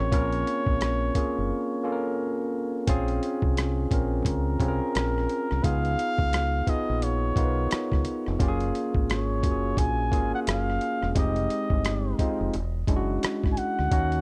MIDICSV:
0, 0, Header, 1, 6, 480
1, 0, Start_track
1, 0, Key_signature, -5, "minor"
1, 0, Tempo, 689655
1, 83, Time_signature, 4, 2, 24, 8
1, 9890, End_track
2, 0, Start_track
2, 0, Title_t, "Muted trumpet"
2, 0, Program_c, 0, 59
2, 0, Note_on_c, 0, 73, 98
2, 1518, Note_off_c, 0, 73, 0
2, 2961, Note_on_c, 0, 70, 84
2, 3927, Note_on_c, 0, 77, 120
2, 3937, Note_off_c, 0, 70, 0
2, 4658, Note_on_c, 0, 75, 95
2, 4668, Note_off_c, 0, 77, 0
2, 4896, Note_on_c, 0, 73, 84
2, 4907, Note_off_c, 0, 75, 0
2, 5610, Note_off_c, 0, 73, 0
2, 6335, Note_on_c, 0, 73, 81
2, 6808, Note_on_c, 0, 80, 107
2, 6819, Note_off_c, 0, 73, 0
2, 7192, Note_off_c, 0, 80, 0
2, 7200, Note_on_c, 0, 78, 85
2, 7240, Note_off_c, 0, 78, 0
2, 7290, Note_on_c, 0, 77, 92
2, 7739, Note_off_c, 0, 77, 0
2, 7779, Note_on_c, 0, 75, 88
2, 8463, Note_off_c, 0, 75, 0
2, 9413, Note_on_c, 0, 80, 69
2, 9452, Note_on_c, 0, 78, 93
2, 9462, Note_off_c, 0, 80, 0
2, 9890, Note_off_c, 0, 78, 0
2, 9890, End_track
3, 0, Start_track
3, 0, Title_t, "Tine electric piano"
3, 0, Program_c, 1, 4
3, 0, Control_c, 1, 64, 127
3, 0, Note_on_c, 1, 60, 75
3, 0, Note_on_c, 1, 61, 61
3, 0, Note_on_c, 1, 65, 60
3, 0, Note_on_c, 1, 70, 72
3, 79, Note_on_c, 1, 58, 78
3, 84, Note_off_c, 1, 61, 0
3, 84, Note_on_c, 1, 61, 80
3, 89, Note_off_c, 1, 65, 0
3, 89, Note_on_c, 1, 65, 67
3, 94, Note_off_c, 1, 70, 0
3, 94, Note_on_c, 1, 70, 81
3, 729, Note_off_c, 1, 58, 0
3, 731, Note_off_c, 1, 61, 0
3, 734, Note_off_c, 1, 65, 0
3, 736, Note_off_c, 1, 70, 0
3, 801, Note_on_c, 1, 58, 72
3, 808, Note_on_c, 1, 61, 62
3, 812, Note_on_c, 1, 65, 62
3, 817, Note_on_c, 1, 68, 74
3, 1234, Note_off_c, 1, 58, 0
3, 1237, Note_off_c, 1, 61, 0
3, 1239, Note_off_c, 1, 65, 0
3, 1242, Note_off_c, 1, 68, 0
3, 1277, Note_on_c, 1, 58, 69
3, 1283, Note_on_c, 1, 61, 67
3, 1287, Note_on_c, 1, 65, 67
3, 1293, Note_on_c, 1, 69, 67
3, 1337, Note_on_c, 1, 70, 73
3, 1343, Note_off_c, 1, 69, 0
3, 1928, Note_off_c, 1, 58, 0
3, 1931, Note_off_c, 1, 61, 0
3, 1933, Note_off_c, 1, 65, 0
3, 1958, Note_off_c, 1, 70, 0
3, 1999, Note_off_c, 1, 60, 0
3, 1999, Note_on_c, 1, 60, 88
3, 2004, Note_on_c, 1, 61, 81
3, 2011, Note_on_c, 1, 65, 88
3, 2012, Control_c, 1, 64, 0
3, 2016, Note_on_c, 1, 68, 105
3, 2134, Control_c, 1, 64, 127
3, 2649, Note_off_c, 1, 60, 0
3, 2651, Note_off_c, 1, 61, 0
3, 2655, Note_off_c, 1, 65, 0
3, 2657, Note_off_c, 1, 68, 0
3, 2723, Note_on_c, 1, 60, 60
3, 2728, Note_on_c, 1, 61, 60
3, 2732, Note_on_c, 1, 65, 59
3, 2739, Note_on_c, 1, 70, 71
3, 3155, Note_off_c, 1, 60, 0
3, 3157, Note_off_c, 1, 61, 0
3, 3159, Note_off_c, 1, 65, 0
3, 3163, Note_off_c, 1, 70, 0
3, 3199, Note_on_c, 1, 60, 61
3, 3203, Note_on_c, 1, 61, 61
3, 3210, Note_on_c, 1, 65, 60
3, 3216, Note_on_c, 1, 68, 62
3, 3260, Note_on_c, 1, 70, 80
3, 3265, Note_off_c, 1, 68, 0
3, 3849, Note_off_c, 1, 60, 0
3, 3851, Note_off_c, 1, 61, 0
3, 3854, Note_off_c, 1, 65, 0
3, 3879, Note_off_c, 1, 70, 0
3, 3919, Note_on_c, 1, 59, 77
3, 3922, Note_on_c, 1, 63, 64
3, 3928, Note_on_c, 1, 65, 76
3, 3932, Note_on_c, 1, 68, 81
3, 3933, Control_c, 1, 64, 0
3, 4055, Control_c, 1, 64, 127
3, 4569, Note_off_c, 1, 59, 0
3, 4570, Note_off_c, 1, 63, 0
3, 4573, Note_off_c, 1, 65, 0
3, 4575, Note_off_c, 1, 68, 0
3, 4640, Note_on_c, 1, 59, 66
3, 4645, Note_on_c, 1, 63, 57
3, 4650, Note_on_c, 1, 65, 55
3, 4657, Note_on_c, 1, 68, 63
3, 5073, Note_off_c, 1, 59, 0
3, 5076, Note_off_c, 1, 63, 0
3, 5078, Note_off_c, 1, 65, 0
3, 5082, Note_off_c, 1, 68, 0
3, 5124, Note_on_c, 1, 59, 61
3, 5129, Note_on_c, 1, 63, 64
3, 5136, Note_on_c, 1, 65, 66
3, 5140, Note_on_c, 1, 70, 56
3, 5186, Note_on_c, 1, 71, 68
3, 5187, Note_off_c, 1, 70, 0
3, 5772, Note_off_c, 1, 59, 0
3, 5774, Note_off_c, 1, 63, 0
3, 5777, Note_off_c, 1, 65, 0
3, 5802, Note_off_c, 1, 71, 0
3, 5839, Note_on_c, 1, 58, 90
3, 5846, Note_on_c, 1, 61, 88
3, 5851, Control_c, 1, 64, 0
3, 5851, Note_on_c, 1, 65, 82
3, 5857, Note_on_c, 1, 67, 80
3, 5904, Note_on_c, 1, 68, 111
3, 5905, Note_off_c, 1, 67, 0
3, 5982, Control_c, 1, 64, 127
3, 6489, Note_off_c, 1, 58, 0
3, 6493, Note_off_c, 1, 61, 0
3, 6495, Note_off_c, 1, 65, 0
3, 6521, Note_off_c, 1, 68, 0
3, 6561, Note_on_c, 1, 58, 53
3, 6565, Note_on_c, 1, 61, 58
3, 6572, Note_on_c, 1, 65, 46
3, 6577, Note_on_c, 1, 66, 47
3, 6621, Note_on_c, 1, 68, 57
3, 6625, Note_off_c, 1, 66, 0
3, 6994, Note_off_c, 1, 58, 0
3, 6996, Note_off_c, 1, 61, 0
3, 6999, Note_off_c, 1, 65, 0
3, 7024, Note_off_c, 1, 68, 0
3, 7040, Note_on_c, 1, 58, 71
3, 7043, Note_on_c, 1, 61, 66
3, 7048, Note_on_c, 1, 65, 68
3, 7055, Note_on_c, 1, 68, 74
3, 7689, Note_off_c, 1, 58, 0
3, 7691, Note_off_c, 1, 61, 0
3, 7693, Note_off_c, 1, 65, 0
3, 7697, Note_off_c, 1, 68, 0
3, 7759, Note_on_c, 1, 56, 77
3, 7765, Note_on_c, 1, 60, 76
3, 7768, Note_on_c, 1, 63, 69
3, 7773, Control_c, 1, 64, 0
3, 7775, Note_on_c, 1, 67, 82
3, 7911, Control_c, 1, 64, 127
3, 8409, Note_off_c, 1, 56, 0
3, 8412, Note_off_c, 1, 60, 0
3, 8413, Note_off_c, 1, 63, 0
3, 8417, Note_off_c, 1, 67, 0
3, 8482, Note_on_c, 1, 56, 70
3, 8490, Note_on_c, 1, 60, 65
3, 8492, Note_on_c, 1, 63, 68
3, 8499, Note_on_c, 1, 65, 79
3, 8722, Note_off_c, 1, 56, 0
3, 8727, Note_off_c, 1, 60, 0
3, 8727, Note_off_c, 1, 63, 0
3, 8731, Note_off_c, 1, 65, 0
3, 8733, Control_c, 1, 64, 0
3, 8873, Control_c, 1, 64, 127
3, 8960, Note_on_c, 1, 56, 76
3, 8968, Note_on_c, 1, 61, 74
3, 8972, Note_on_c, 1, 62, 71
3, 8978, Note_on_c, 1, 64, 64
3, 9022, Note_on_c, 1, 66, 87
3, 9025, Note_off_c, 1, 64, 0
3, 9610, Note_off_c, 1, 56, 0
3, 9613, Note_off_c, 1, 61, 0
3, 9615, Note_off_c, 1, 62, 0
3, 9641, Note_off_c, 1, 66, 0
3, 9679, Note_on_c, 1, 58, 69
3, 9684, Note_on_c, 1, 61, 81
3, 9690, Note_on_c, 1, 63, 67
3, 9692, Control_c, 1, 64, 0
3, 9694, Note_on_c, 1, 66, 93
3, 9811, Control_c, 1, 64, 127
3, 9890, Note_off_c, 1, 58, 0
3, 9890, Note_off_c, 1, 61, 0
3, 9890, Note_off_c, 1, 63, 0
3, 9890, Note_off_c, 1, 66, 0
3, 9890, End_track
4, 0, Start_track
4, 0, Title_t, "Fingered electric bass"
4, 0, Program_c, 2, 33
4, 1, Note_on_c, 2, 33, 86
4, 90, Note_off_c, 2, 33, 0
4, 90, Note_on_c, 2, 34, 93
4, 299, Note_off_c, 2, 34, 0
4, 466, Note_on_c, 2, 34, 75
4, 761, Note_off_c, 2, 34, 0
4, 963, Note_on_c, 2, 30, 71
4, 1050, Note_off_c, 2, 30, 0
4, 2006, Note_on_c, 2, 34, 95
4, 2216, Note_off_c, 2, 34, 0
4, 2387, Note_on_c, 2, 36, 73
4, 2682, Note_off_c, 2, 36, 0
4, 2724, Note_on_c, 2, 34, 73
4, 2935, Note_off_c, 2, 34, 0
4, 2961, Note_on_c, 2, 37, 81
4, 3173, Note_off_c, 2, 37, 0
4, 3204, Note_on_c, 2, 36, 86
4, 3333, Note_off_c, 2, 36, 0
4, 3449, Note_on_c, 2, 34, 84
4, 3658, Note_off_c, 2, 34, 0
4, 3839, Note_on_c, 2, 36, 83
4, 3917, Note_off_c, 2, 36, 0
4, 3927, Note_on_c, 2, 37, 114
4, 4137, Note_off_c, 2, 37, 0
4, 4307, Note_on_c, 2, 37, 82
4, 4602, Note_off_c, 2, 37, 0
4, 4800, Note_on_c, 2, 34, 82
4, 5089, Note_off_c, 2, 34, 0
4, 5126, Note_on_c, 2, 35, 85
4, 5336, Note_off_c, 2, 35, 0
4, 5517, Note_on_c, 2, 37, 78
4, 5596, Note_off_c, 2, 37, 0
4, 5761, Note_on_c, 2, 29, 89
4, 5838, Note_off_c, 2, 29, 0
4, 5850, Note_on_c, 2, 30, 98
4, 6058, Note_off_c, 2, 30, 0
4, 6232, Note_on_c, 2, 32, 76
4, 6570, Note_off_c, 2, 32, 0
4, 6570, Note_on_c, 2, 30, 88
4, 6778, Note_off_c, 2, 30, 0
4, 6806, Note_on_c, 2, 34, 96
4, 7048, Note_off_c, 2, 34, 0
4, 7048, Note_on_c, 2, 32, 86
4, 7175, Note_off_c, 2, 32, 0
4, 7291, Note_on_c, 2, 30, 81
4, 7499, Note_off_c, 2, 30, 0
4, 7676, Note_on_c, 2, 28, 87
4, 7756, Note_off_c, 2, 28, 0
4, 7768, Note_on_c, 2, 29, 105
4, 7977, Note_off_c, 2, 29, 0
4, 8149, Note_on_c, 2, 31, 74
4, 8443, Note_off_c, 2, 31, 0
4, 8633, Note_on_c, 2, 29, 79
4, 8714, Note_off_c, 2, 29, 0
4, 8731, Note_on_c, 2, 28, 83
4, 8939, Note_off_c, 2, 28, 0
4, 8966, Note_on_c, 2, 30, 82
4, 9176, Note_off_c, 2, 30, 0
4, 9356, Note_on_c, 2, 32, 74
4, 9436, Note_off_c, 2, 32, 0
4, 9598, Note_on_c, 2, 38, 79
4, 9677, Note_off_c, 2, 38, 0
4, 9688, Note_on_c, 2, 39, 95
4, 9890, Note_off_c, 2, 39, 0
4, 9890, End_track
5, 0, Start_track
5, 0, Title_t, "Muted fingered electric bass strokes"
5, 4647, Note_on_c, 9, 29, 38
5, 4717, Note_off_c, 9, 29, 0
5, 5375, Note_on_c, 9, 29, 45
5, 5445, Note_off_c, 9, 29, 0
5, 8488, Note_on_c, 9, 29, 36
5, 8557, Note_off_c, 9, 29, 0
5, 9212, Note_on_c, 9, 29, 47
5, 9282, Note_off_c, 9, 29, 0
5, 9890, End_track
6, 0, Start_track
6, 0, Title_t, "Drums"
6, 84, Note_on_c, 9, 36, 110
6, 87, Note_on_c, 9, 42, 75
6, 153, Note_off_c, 9, 36, 0
6, 157, Note_off_c, 9, 42, 0
6, 226, Note_on_c, 9, 42, 44
6, 296, Note_off_c, 9, 42, 0
6, 330, Note_on_c, 9, 42, 62
6, 399, Note_off_c, 9, 42, 0
6, 462, Note_on_c, 9, 36, 87
6, 532, Note_off_c, 9, 36, 0
6, 563, Note_on_c, 9, 42, 80
6, 570, Note_on_c, 9, 37, 89
6, 632, Note_off_c, 9, 42, 0
6, 640, Note_off_c, 9, 37, 0
6, 800, Note_on_c, 9, 36, 69
6, 801, Note_on_c, 9, 42, 59
6, 870, Note_off_c, 9, 36, 0
6, 871, Note_off_c, 9, 42, 0
6, 2001, Note_on_c, 9, 36, 103
6, 2001, Note_on_c, 9, 42, 85
6, 2070, Note_off_c, 9, 36, 0
6, 2070, Note_off_c, 9, 42, 0
6, 2145, Note_on_c, 9, 42, 43
6, 2214, Note_off_c, 9, 42, 0
6, 2247, Note_on_c, 9, 42, 60
6, 2316, Note_off_c, 9, 42, 0
6, 2382, Note_on_c, 9, 36, 88
6, 2451, Note_off_c, 9, 36, 0
6, 2487, Note_on_c, 9, 42, 79
6, 2495, Note_on_c, 9, 37, 89
6, 2557, Note_off_c, 9, 42, 0
6, 2564, Note_off_c, 9, 37, 0
6, 2721, Note_on_c, 9, 36, 81
6, 2724, Note_on_c, 9, 42, 62
6, 2790, Note_off_c, 9, 36, 0
6, 2794, Note_off_c, 9, 42, 0
6, 2957, Note_on_c, 9, 36, 89
6, 2963, Note_on_c, 9, 42, 83
6, 3027, Note_off_c, 9, 36, 0
6, 3033, Note_off_c, 9, 42, 0
6, 3199, Note_on_c, 9, 36, 82
6, 3204, Note_on_c, 9, 42, 57
6, 3269, Note_off_c, 9, 36, 0
6, 3274, Note_off_c, 9, 42, 0
6, 3446, Note_on_c, 9, 42, 88
6, 3457, Note_on_c, 9, 37, 118
6, 3516, Note_off_c, 9, 42, 0
6, 3526, Note_off_c, 9, 37, 0
6, 3605, Note_on_c, 9, 37, 35
6, 3675, Note_off_c, 9, 37, 0
6, 3685, Note_on_c, 9, 42, 63
6, 3755, Note_off_c, 9, 42, 0
6, 3834, Note_on_c, 9, 37, 34
6, 3903, Note_off_c, 9, 37, 0
6, 3924, Note_on_c, 9, 36, 107
6, 3928, Note_on_c, 9, 42, 80
6, 3994, Note_off_c, 9, 36, 0
6, 3997, Note_off_c, 9, 42, 0
6, 4070, Note_on_c, 9, 42, 41
6, 4140, Note_off_c, 9, 42, 0
6, 4169, Note_on_c, 9, 42, 70
6, 4239, Note_off_c, 9, 42, 0
6, 4304, Note_on_c, 9, 36, 87
6, 4374, Note_off_c, 9, 36, 0
6, 4406, Note_on_c, 9, 42, 84
6, 4414, Note_on_c, 9, 37, 92
6, 4476, Note_off_c, 9, 42, 0
6, 4484, Note_off_c, 9, 37, 0
6, 4642, Note_on_c, 9, 36, 77
6, 4645, Note_on_c, 9, 42, 54
6, 4712, Note_off_c, 9, 36, 0
6, 4715, Note_off_c, 9, 42, 0
6, 4887, Note_on_c, 9, 42, 86
6, 4957, Note_off_c, 9, 42, 0
6, 5122, Note_on_c, 9, 36, 83
6, 5128, Note_on_c, 9, 42, 56
6, 5191, Note_off_c, 9, 36, 0
6, 5197, Note_off_c, 9, 42, 0
6, 5366, Note_on_c, 9, 42, 99
6, 5376, Note_on_c, 9, 37, 115
6, 5435, Note_off_c, 9, 42, 0
6, 5446, Note_off_c, 9, 37, 0
6, 5510, Note_on_c, 9, 36, 91
6, 5521, Note_on_c, 9, 37, 31
6, 5580, Note_off_c, 9, 36, 0
6, 5591, Note_off_c, 9, 37, 0
6, 5601, Note_on_c, 9, 42, 64
6, 5670, Note_off_c, 9, 42, 0
6, 5752, Note_on_c, 9, 37, 32
6, 5821, Note_off_c, 9, 37, 0
6, 5844, Note_on_c, 9, 36, 119
6, 5847, Note_on_c, 9, 42, 75
6, 5914, Note_off_c, 9, 36, 0
6, 5917, Note_off_c, 9, 42, 0
6, 5989, Note_on_c, 9, 42, 44
6, 6058, Note_off_c, 9, 42, 0
6, 6091, Note_on_c, 9, 42, 62
6, 6160, Note_off_c, 9, 42, 0
6, 6226, Note_on_c, 9, 36, 97
6, 6296, Note_off_c, 9, 36, 0
6, 6332, Note_on_c, 9, 42, 74
6, 6340, Note_on_c, 9, 37, 99
6, 6401, Note_off_c, 9, 42, 0
6, 6409, Note_off_c, 9, 37, 0
6, 6564, Note_on_c, 9, 36, 80
6, 6567, Note_on_c, 9, 42, 61
6, 6634, Note_off_c, 9, 36, 0
6, 6637, Note_off_c, 9, 42, 0
6, 6801, Note_on_c, 9, 36, 87
6, 6808, Note_on_c, 9, 42, 78
6, 6870, Note_off_c, 9, 36, 0
6, 6878, Note_off_c, 9, 42, 0
6, 7042, Note_on_c, 9, 36, 79
6, 7050, Note_on_c, 9, 42, 54
6, 7112, Note_off_c, 9, 36, 0
6, 7120, Note_off_c, 9, 42, 0
6, 7288, Note_on_c, 9, 42, 99
6, 7299, Note_on_c, 9, 37, 116
6, 7358, Note_off_c, 9, 42, 0
6, 7369, Note_off_c, 9, 37, 0
6, 7445, Note_on_c, 9, 37, 34
6, 7515, Note_off_c, 9, 37, 0
6, 7525, Note_on_c, 9, 42, 62
6, 7594, Note_off_c, 9, 42, 0
6, 7673, Note_on_c, 9, 37, 31
6, 7743, Note_off_c, 9, 37, 0
6, 7763, Note_on_c, 9, 36, 101
6, 7765, Note_on_c, 9, 42, 81
6, 7833, Note_off_c, 9, 36, 0
6, 7835, Note_off_c, 9, 42, 0
6, 7907, Note_on_c, 9, 42, 45
6, 7976, Note_off_c, 9, 42, 0
6, 8006, Note_on_c, 9, 42, 65
6, 8076, Note_off_c, 9, 42, 0
6, 8143, Note_on_c, 9, 36, 93
6, 8213, Note_off_c, 9, 36, 0
6, 8245, Note_on_c, 9, 42, 81
6, 8252, Note_on_c, 9, 37, 97
6, 8314, Note_off_c, 9, 42, 0
6, 8322, Note_off_c, 9, 37, 0
6, 8482, Note_on_c, 9, 36, 77
6, 8485, Note_on_c, 9, 42, 54
6, 8552, Note_off_c, 9, 36, 0
6, 8555, Note_off_c, 9, 42, 0
6, 8725, Note_on_c, 9, 42, 80
6, 8794, Note_off_c, 9, 42, 0
6, 8961, Note_on_c, 9, 36, 82
6, 8964, Note_on_c, 9, 42, 52
6, 9030, Note_off_c, 9, 36, 0
6, 9034, Note_off_c, 9, 42, 0
6, 9208, Note_on_c, 9, 42, 93
6, 9218, Note_on_c, 9, 37, 114
6, 9278, Note_off_c, 9, 42, 0
6, 9288, Note_off_c, 9, 37, 0
6, 9351, Note_on_c, 9, 36, 91
6, 9366, Note_on_c, 9, 37, 31
6, 9421, Note_off_c, 9, 36, 0
6, 9435, Note_off_c, 9, 37, 0
6, 9446, Note_on_c, 9, 42, 64
6, 9515, Note_off_c, 9, 42, 0
6, 9596, Note_on_c, 9, 37, 33
6, 9665, Note_off_c, 9, 37, 0
6, 9683, Note_on_c, 9, 36, 109
6, 9685, Note_on_c, 9, 42, 79
6, 9753, Note_off_c, 9, 36, 0
6, 9755, Note_off_c, 9, 42, 0
6, 9828, Note_on_c, 9, 42, 42
6, 9890, Note_off_c, 9, 42, 0
6, 9890, End_track
0, 0, End_of_file